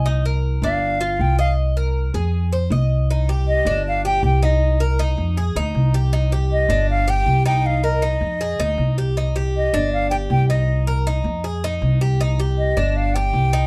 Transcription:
X:1
M:4/4
L:1/8
Q:1/4=158
K:Gphr
V:1 name="Flute"
z3 f3 g f | z8 | z2 e2 f g g e- | e z6 z |
z2 e2 f g2 g | f e6 z | z2 e2 f g g e- | e z6 z |
z2 e2 f g3 |]
V:2 name="Cuban tres"
E B2 D2 F2 e- | e B2 A2 c e2 | E G2 D2 G2 E- | E B E2 A E2 G |
E G2 D2 G2 E- | E B E2 A E2 G | E G2 D2 G2 E- | E B E2 A E2 G |
E G2 D2 G2 E |]
V:3 name="Upright bass" clef=bass
C,,3 G,,,3 C,,2- | C,,3 F,,3 C,,2- | C,,3 G,,,3 C,,2- | C,,3 F,,2 D,, C,,2- |
C,,3 G,,,3 C,,2- | C,,3 F,,2 D,, C,,2- | C,,3 G,,,3 C,,2- | C,,3 F,,3 C,,2- |
C,,3 G,,,3 C,,2 |]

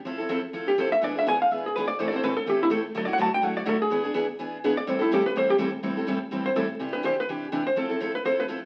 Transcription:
X:1
M:4/4
L:1/8
Q:"Swing" 1/4=249
K:Am
V:1 name="Hollow-body jazz guitar"
z4 z G c e | d e ^g f e ^G B d | (3c d c B A G E z2 | (3A d ^f a g f d A ^G- |
^G4 z3 d | c E G B c G z2 | z4 z c A2- | A B c B z3 c |
A3 B c B z2 |]
V:2 name="Steel-string acoustic guitar"
[F,CEA] [CEA] [F,CEA] z [F,CEA] z [F,CEA] z | [E,B,D^G] [B,DG] [E,B,DG] z [E,B,DG] z [E,B,DG] z | [A,,E,A,CEA] [A,CEA] [A,,E,A,CEA] z [A,,E,A,CEA] z [A,,E,A,CEA] z | [D,^F,A,E^F] [A,EF] [D,F,A,EF] z [D,F,A,EF] z [D,F,A,EF] z |
[E,B,D^G] [B,DG] [E,B,DG] z [E,B,DG] z [E,B,DG] z | [A,,E,G,CEA] [G,CEA] [A,,E,G,CEA] z [A,,E,G,CEA] z [A,,E,G,CEA] z | [A,,E,G,CEA] [G,CEA] [A,,E,G,CEA] z [A,,E,G,CEA] z [A,,E,G,CEA] z | [C,E,DG] [E,DG] [C,E,DG] z [C,E,DG] z [C,E,DG] z |
[F,CEA] [CEA] [F,CEA] z [F,CEA] z [F,CEA] z |]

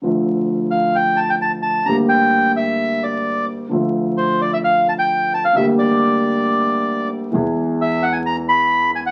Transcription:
X:1
M:4/4
L:1/16
Q:1/4=132
K:Dm
V:1 name="Bandoneon"
z6 f2 g2 a g a2 a2 | b2 g4 e4 d4 z2 | z4 c2 d e f2 a g3 a f | e2 d12 z2 |
z4 e2 ^f ^g b2 =b4 g f |]
V:2 name="Grand piano" clef=bass
[D,,D,F,A,F]16 | [D,,D,G,B,G]16 | [D,,D,F,A,F]16 | [D,,D,G,B,G]16 |
[E,,E,^G,=B,^G]16 |]
V:3 name="Upright bass" clef=bass
D,,16 | D,,16 | D,,16 | D,,16 |
E,,16 |]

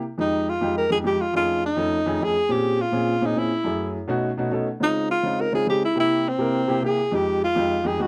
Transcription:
X:1
M:4/4
L:1/8
Q:1/4=208
K:Fm
V:1 name="Alto saxophone"
z E2 F2 B A G | F F2 E4 ^G- | ^G =G2 F3 E =E- | =E3 z4 z |
z E2 F2 B A G | =E E2 C4 A- | A G2 F3 A _G |]
V:2 name="Grand piano"
z [F,,A,EG]2 z [F,,A,EG] z [F,,A,EG] [F,,A,EG] | z [F,,=A,^CE^G]2 z [F,,A,CE=A] z [F,,A,CEG] [F,,A,CEG] | z [B,,CDA]2 z [B,,CDA] z [B,,CDA] [B,,CDA] | z [_G,,=A,_F_A]2 z [=B,,=A,^C^D^F] z [B,,A,CDF] [B,,A,CD=A] |
z [D,A,CEF]2 z [D,A,CEF] z [D,A,CEF] [D,A,CEA] | z [C,B,=EG]2 z [C,B,EB] z [C,B,EG] [C,B,EG] | z [F,,A,EG]2 z [F,,A,EG] z [F,,A,EG] [F,,A,EG] |]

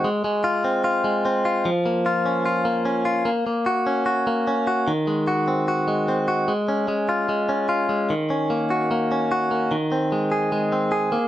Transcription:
X:1
M:4/4
L:1/8
Q:1/4=149
K:Abmix
V:1 name="Clean electric guitar"
A, A, F C F A, C F | F, B, F D F B, D F | B, B, G D G B, D G | E, A, G C G A, C G |
A, D A, F A, D F A, | E, D B, G B, D G B, | E, C A, A A, C A B, |]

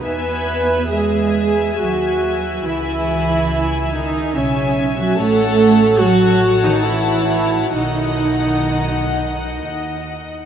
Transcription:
X:1
M:3/4
L:1/16
Q:1/4=68
K:E
V:1 name="Violin section"
g4 g8 | g8 g4 | a4 a8 | f12 |]
V:2 name="Violin section"
e4 e8 | e8 e4 | [cf]4 [cf]8 | [df]12 |]
V:3 name="Viola section"
B4 G4 F4 | E6 D2 C3 F | A4 F3 D E4 | D8- D2 z2 |]
V:4 name="Cello section" clef=bass
B,4 G,4 F,4 | E,6 D,2 C,3 F, | A,4 F,3 D, E,4 | D,8- D,2 z2 |]
V:5 name="Double bass section" clef=bass
E,,8 D,,4 | C,,8 B,,,4 | A,,,12 | B,,,8 D,,4 |]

